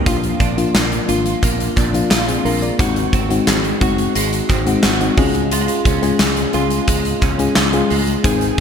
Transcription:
Already playing: A#3 D#4
0.06 A#1 F3 A#3 D4 F4, kick, closed hi-hat
0.23 closed hi-hat
0.40 A#1 D4, kick, closed hi-hat
0.57 F3 A#3 D4 F4, closed hi-hat
0.74 A#1 A#3, snare, clap, closed hi-hat, tambourine
0.92 closed hi-hat
1.08 G#1 F3 A#3 D4 F4, closed hi-hat
1.26 closed hi-hat
1.43 A#1 A#3, kick, closed hi-hat
1.60 closed hi-hat
1.77 A#1 D4, kick, clap, closed hi-hat
1.93 F3 A#3 D4 F4, closed hi-hat
2.11 A#1 F4, snare, clap, closed hi-hat, tambourine
2.28 C4 G#4, closed hi-hat
2.45 A#1 A#3 D4 A#4, open hi-hat
2.62 F4 D5, closed hi-hat
2.78 G#1 D#3 G#3 C4 D#4 F#4, kick, closed hi-hat
2.96 closed hi-hat
3.13 G#1 C4, kick, closed hi-hat
3.29 G#3 C4 D#4 F#4, closed hi-hat
3.47 G#1 G#3, snare, clap, closed hi-hat, tambourine
3.64 closed hi-hat
3.81 F#1 G#3 C4 D#4 F#4, kick, closed hi-hat
3.98 closed hi-hat
4.15 G#1 G#3, closed hi-hat
4.33 closed hi-hat
4.50 G#1 C4, kick, clap, closed hi-hat
4.66 G#3 C4 D#4 F#4, closed hi-hat
4.83 G#1 F#4, snare, clap, closed hi-hat, tambourine
5.00 G#3 C4 D#4 F#4, closed hi-hat
5.17 C#2 G#3 C#4 F4 G#4, kick, open hi-hat
5.35 closed hi-hat
5.52 G#3 F4, closed hi-hat
5.68 closed hi-hat
5.85 C#2 C#4, kick, closed hi-hat
6.02 G#3 C#4 F4 G#4, closed hi-hat
6.19 C#2 G#3, snare, clap, closed hi-hat, tambourine
6.36 closed hi-hat
6.53 C#2 G#3 C#4 F4 G#4, closed hi-hat
6.70 closed hi-hat
6.88 C#2 G#3, kick, closed hi-hat
7.05 closed hi-hat
7.22 C#2 C#4, kick, clap, closed hi-hat
7.38 G#3 C#4 F4 G#4, closed hi-hat
7.55 C#2 F4, snare, clap, closed hi-hat, tambourine
7.73 G#3 C#4 F4 G#4, closed hi-hat
7.90 C#2 G#3, open hi-hat
8.07 closed hi-hat
8.23 G#1 D#3 G#3 C4 D#4 G#4, kick, closed hi-hat
8.41 closed hi-hat

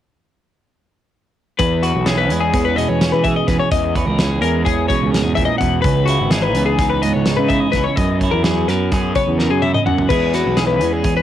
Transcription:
1.59 E2 B4, kick, closed hi-hat
1.83 F#4 B4, closed hi-hat
1.95 B1
2.06 E3 C#4 G#4, snare, closed hi-hat
2.18 B4
2.30 E2 G#3, closed hi-hat
2.40 G#4
2.54 E2 C#4, kick, closed hi-hat
2.65 B4
2.76 B2 G#3 D#5, closed hi-hat
2.89 E2 C#5
3.01 C#4, snare, closed hi-hat
3.12 E3 B4
3.24 G#4 E5, kick, closed hi-hat
3.36 D#5
3.47 E2 B4, kick, snare, closed hi-hat
3.60 C#5
3.71 E2 D#5, kick, closed hi-hat
3.95 B4 C#5, kick, closed hi-hat
4.06 C#2 A#4
4.19 E3 C#4 G#4, snare, closed hi-hat
4.42 E2 G#3 A#4, closed hi-hat
4.65 E2 C#4 G#4, kick, closed hi-hat
4.88 B2 G#3 C#5, kick, closed hi-hat
5.02 C#2
5.11 G#2 A#4, snare, closed hi-hat
5.22 E2 G#4
5.35 A#2 E5, kick, closed hi-hat
5.45 D#5
5.58 E2 B2 F#5, kick, closed hi-hat
5.82 C#2 C#3 B4, kick, closed hi-hat
6.06 E4 F#4, closed hi-hat
6.21 G#1
6.31 E3 D#4 G#4, snare, closed hi-hat
6.42 B4
6.55 C#2 B3, closed hi-hat
6.66 G#4
6.79 C#2 D#4, kick, snare, closed hi-hat
6.90 B4
7.02 G#2 B3 D#5, closed hi-hat
7.13 C#2 C#5
7.26 D#4, snare, closed hi-hat
7.37 C#3 B4
7.48 E5, kick, closed hi-hat
7.53 E4
7.60 D#5
7.72 C#2 B4, kick, snare, closed hi-hat
7.76 C#3
7.84 C#5
7.96 F#2 D#5, kick, closed hi-hat
8.20 E4 C#5, kick, closed hi-hat
8.31 E2 A#4
8.43 F#3 C#4 G#4, snare, closed hi-hat
8.68 F#2 B3 A#4, snare, closed hi-hat
8.92 F#2 C#4 G#4, kick, snare, closed hi-hat
9.15 C#3 B3 C#5, kick, closed hi-hat
9.27 E2
9.39 C#4 A#4, snare
9.50 F#2 G#4
9.62 E4 E5, high tom
9.74 D#5, mid tom
9.85 F#2 F#5, mid tom
9.98 floor tom
10.09 E2 E3 G#3 C#4 G#4 B4, kick, closed hi-hat, crash
10.34 F#4 B4, snare, closed hi-hat
10.46 B1
10.57 E3 C#4 G#4, snare, closed hi-hat
10.67 B4
10.81 E2 G#3, closed hi-hat
10.93 G#4
11.04 E2 C#4, kick, closed hi-hat
11.17 B4

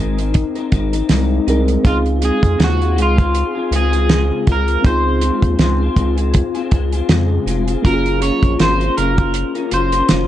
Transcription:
Already playing: G#1 G#3 C4 D#4 G#4 A#4
0.00 C4 D#4 A#4
0.18 C4 D#4 A#4, closed hi-hat
0.34 kick, closed hi-hat
0.55 C4 D#4 A#4, closed hi-hat
0.72 G#1 G#3 C4 D#4 A#4, kick, closed hi-hat
0.93 C4 D#4 A#4, closed hi-hat
1.09 C2 G#3 C4 D#4 A#4, snare, closed hi-hat
1.47 C2 G#3 C4 D#4 G#4 A#4, closed hi-hat
1.68 closed hi-hat
1.83 C#2 C#3 G#3 C4 D#4 F4 G#4 F5, kick, closed hi-hat
1.88 G#4
2.06 closed hi-hat
2.21 G#3 C4 F4 G#4, closed hi-hat
2.42 F2, kick, closed hi-hat
2.58 D#2 C#3 G#3 C4 F4 G#4, snare, closed hi-hat
2.64 F#4
2.79 C4 F4 G#4, closed hi-hat
2.96 C#2 G#3 C4 F4 G#4, closed hi-hat
3.02 F4
3.17 C4 F4 G#4, kick, closed hi-hat
3.35 closed hi-hat
3.55 C4 F4 G#4
3.71 C#2 G#3 C4 F4 G#4, closed hi-hat
3.76 G#4
3.92 C4 F4 G#4, closed hi-hat
4.09 C#3 G#3 C4 F4 G#4, snare, closed hi-hat
4.46 C#2 G#3 C4 F4 G#4, kick, closed hi-hat
4.52 A#4
4.68 closed hi-hat
4.82 C#2 C#3 G#3 C4 D#4 F4 G#4, kick, closed hi-hat
4.86 G#4 C5
5.21 G#3 C4 F4 G#4, closed hi-hat
5.42 D#2, kick, closed hi-hat
5.59 C#2 C#3 G#3 C4 F4 G#4, snare, closed hi-hat
5.79 C4 F4 G#4
5.96 C#2 G#3 C4 F4 G#4, kick, closed hi-hat
6.17 C4 F4 G#4, closed hi-hat
6.34 kick, closed hi-hat
6.54 C4 F4 G#4, closed hi-hat
6.71 C#2 G#3 C4 F4 G#4, kick, closed hi-hat
6.92 C4 F4 G#4, closed hi-hat
7.09 F2 C#3 G#3 C4 F4 G#4, snare, closed hi-hat
7.46 F1 G#3 C4 F4 G#4, closed hi-hat
7.66 C4 F4 G#4, closed hi-hat
7.82 F#1 F#3 A#3 C#4 F4 A#4, kick, closed hi-hat
7.87 F#4
7.94 G#4
8.06 closed hi-hat
8.21 F#3 C#4 F4 A#4 C#5, closed hi-hat
8.43 A#1, kick, closed hi-hat
8.59 G#1 F#3 C#4 F4 A#4 C5, snare, closed hi-hat
8.79 C#4 F4 A#4, closed hi-hat
8.97 F#1 F#3 C#4 F4 A#4, closed hi-hat
9.17 C#4 F4 A#4, kick, closed hi-hat
9.34 closed hi-hat
9.55 C#4 F4 A#4, closed hi-hat
9.71 F#1 F#3 C#4 F4 A#4 C5, closed hi-hat
9.92 C#4 F4 A#4, closed hi-hat
10.09 F#1 F#3 C#4 F4 A#4, snare, closed hi-hat

